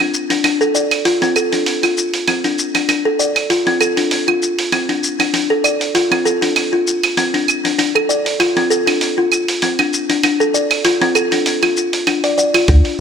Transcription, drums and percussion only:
0.00 open hi-hat, claves
0.14 shaker
0.30 open hi-hat, shaker
0.44 open hi-hat, claves, shaker
0.61 shaker
0.75 shaker
0.91 open hi-hat, claves, shaker
1.05 open hi-hat, shaker
1.22 open hi-hat, shaker
1.36 claves, shaker
1.53 open hi-hat, shaker
1.66 open hi-hat, shaker
1.83 open hi-hat, claves, shaker
1.98 shaker
2.14 open hi-hat, shaker
2.28 open hi-hat, claves, shaker
2.44 open hi-hat, shaker
2.59 shaker
2.75 open hi-hat, claves, shaker
2.89 open hi-hat, claves, shaker
3.20 shaker
3.36 open hi-hat, claves, shaker
3.50 open hi-hat, shaker
3.67 open hi-hat
3.81 claves, shaker
3.97 open hi-hat, shaker
4.11 open hi-hat, shaker
4.28 claves
4.43 shaker
4.59 open hi-hat, shaker
4.72 open hi-hat, claves, shaker
4.89 open hi-hat
5.04 shaker
5.20 open hi-hat, claves, shaker
5.34 open hi-hat, shaker
5.64 claves, shaker
5.81 open hi-hat, shaker
5.95 open hi-hat, shaker
6.12 open hi-hat, claves
6.26 shaker
6.42 open hi-hat, shaker
6.56 open hi-hat, claves, shaker
6.87 shaker
7.03 open hi-hat, claves, shaker
7.17 open hi-hat, shaker
7.34 open hi-hat
7.48 claves, shaker
7.65 open hi-hat, shaker
7.79 open hi-hat, shaker
7.96 claves
8.10 shaker
8.26 open hi-hat, shaker
8.40 open hi-hat, claves, shaker
8.57 open hi-hat
8.71 shaker
8.87 open hi-hat, claves, shaker
9.01 open hi-hat, shaker
9.32 claves, shaker
9.48 open hi-hat, shaker
9.62 open hi-hat, shaker
9.79 open hi-hat, claves
9.93 shaker
10.10 open hi-hat, shaker
10.23 open hi-hat, claves, shaker
10.41 shaker
10.55 shaker
10.71 open hi-hat, claves, shaker
10.85 open hi-hat, shaker
11.01 open hi-hat
11.15 claves, shaker
11.32 open hi-hat, shaker
11.46 open hi-hat, shaker
11.63 open hi-hat, claves
11.77 shaker
11.93 open hi-hat, shaker
12.07 open hi-hat, claves, shaker
12.24 open hi-hat, shaker
12.38 shaker
12.54 open hi-hat, claves, shaker
12.68 kick, open hi-hat, shaker
12.85 open hi-hat

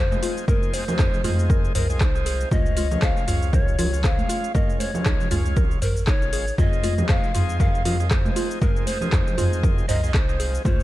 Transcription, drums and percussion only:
0.12 high conga, shaker
0.23 open hi-hat, shaker
0.37 shaker
0.48 kick, mid tom, high conga, shaker
0.63 shaker
0.73 open hi-hat, high conga, shaker
0.88 low conga, shaker
0.99 kick, cross-stick, clap, high conga, shaker
1.13 low conga, shaker
1.24 mid tom, open hi-hat, high conga, shaker
1.39 shaker
1.50 kick, low conga, shaker
1.65 shaker
1.75 mid tom, open hi-hat, shaker
1.90 shaker
2.01 kick, cross-stick, clap, shaker
2.15 shaker
2.26 open hi-hat, shaker
2.41 shaker
2.51 kick, mid tom, high conga, shaker
2.66 shaker
2.76 open hi-hat, high conga, shaker
2.91 high conga, low conga, shaker
3.02 kick, cross-stick, clap, high conga, shaker
3.17 shaker
3.28 mid tom, open hi-hat, high conga, shaker
3.42 shaker
3.53 kick, mid tom, low conga, shaker
3.68 shaker
3.79 open hi-hat, low conga, shaker
3.94 shaker
4.04 kick, cross-stick, clap, shaker
4.18 high conga, shaker
4.29 open hi-hat, shaker
4.44 shaker
4.55 kick, mid tom, high conga, shaker
4.70 shaker
4.80 open hi-hat, high conga, shaker
4.94 low conga, shaker
5.05 kick, cross-stick, clap, high conga, shaker
5.20 low conga, shaker
5.31 mid tom, open hi-hat, high conga, shaker
5.46 shaker
5.57 kick, low conga, shaker
5.71 shaker
5.82 mid tom, open hi-hat, shaker
5.97 shaker
6.07 kick, cross-stick, clap, shaker
6.22 shaker
6.33 open hi-hat, shaker
6.48 shaker
6.58 kick, mid tom, high conga, shaker
6.73 shaker
6.83 open hi-hat, high conga, shaker
6.98 high conga, low conga, shaker
7.09 kick, cross-stick, clap, shaker
7.24 shaker
7.34 mid tom, open hi-hat, high conga, shaker
7.49 shaker
7.60 kick, mid tom, low conga, shaker
7.75 shaker
7.85 open hi-hat, low conga, shaker
8.00 shaker
8.11 kick, cross-stick, clap, shaker
8.25 high conga, shaker
8.36 open hi-hat, shaker
8.51 shaker
8.62 kick, mid tom, high conga, shaker
8.76 shaker
8.86 open hi-hat, high conga, shaker
9.01 low conga, shaker
9.12 kick, cross-stick, clap, high conga, shaker
9.27 low conga, shaker
9.38 mid tom, open hi-hat, high conga, shaker
9.53 shaker
9.63 kick, low conga, shaker
9.78 shaker
9.89 mid tom, open hi-hat, shaker
10.04 shaker
10.14 kick, cross-stick, clap, shaker
10.29 shaker
10.40 open hi-hat, shaker
10.55 shaker
10.65 kick, mid tom, high conga, shaker
10.80 shaker

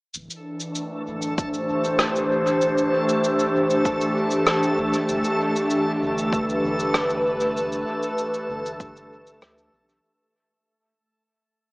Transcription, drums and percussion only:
0.14 cabasa
0.30 cabasa
0.60 cabasa
0.75 cabasa
1.22 cabasa
1.38 kick, cabasa
1.54 cabasa
1.84 cabasa
1.99 cross-stick, cabasa
2.16 cabasa
2.47 cabasa
2.61 cabasa
2.78 cabasa
3.09 cabasa
3.24 cabasa
3.39 cabasa
3.70 cabasa
3.85 kick, cabasa
4.01 cabasa
4.31 cabasa
4.47 cross-stick, cabasa
4.63 cabasa
4.93 cabasa
5.09 cabasa
5.24 cabasa
5.56 cabasa
5.70 cabasa
6.18 cabasa
6.33 kick, cabasa
6.49 cabasa
6.79 cabasa
6.94 cross-stick, cabasa
7.10 cabasa
7.41 cabasa
7.57 cabasa
7.72 cabasa
8.03 cabasa
8.18 cabasa
8.34 cabasa
8.66 cabasa
8.80 kick, cabasa
8.97 cabasa
9.27 cabasa
9.42 cross-stick, cabasa
9.58 cabasa
9.89 cabasa

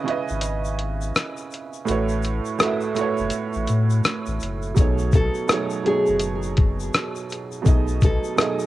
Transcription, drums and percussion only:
0.08 closed hi-hat
0.29 shaker
0.41 closed hi-hat, shaker
0.65 shaker
0.79 closed hi-hat
1.01 shaker
1.16 cross-stick, closed hi-hat, shaker
1.37 shaker
1.51 closed hi-hat, shaker
1.73 shaker
1.87 closed hi-hat, shaker
2.09 shaker
2.22 closed hi-hat, shaker
2.45 shaker
2.60 cross-stick, closed hi-hat, shaker
2.81 shaker
2.96 closed hi-hat, shaker
3.17 shaker
3.30 closed hi-hat, shaker
3.53 shaker
3.67 closed hi-hat, shaker
3.90 shaker
4.04 cross-stick, closed hi-hat, shaker
4.26 shaker
4.40 closed hi-hat, shaker
4.62 shaker
4.76 kick, closed hi-hat, shaker
4.98 shaker
5.12 kick, closed hi-hat, shaker
5.35 shaker
5.49 cross-stick, closed hi-hat, shaker
5.70 shaker
5.86 closed hi-hat
6.06 shaker
6.19 closed hi-hat, shaker
6.43 shaker
6.57 kick, closed hi-hat
6.80 shaker
6.94 cross-stick, closed hi-hat, shaker
7.16 shaker
7.30 closed hi-hat, shaker
7.52 shaker
7.66 kick, closed hi-hat, shaker
7.88 shaker
8.01 kick, closed hi-hat, shaker
8.24 shaker
8.38 cross-stick, closed hi-hat, shaker
8.59 shaker

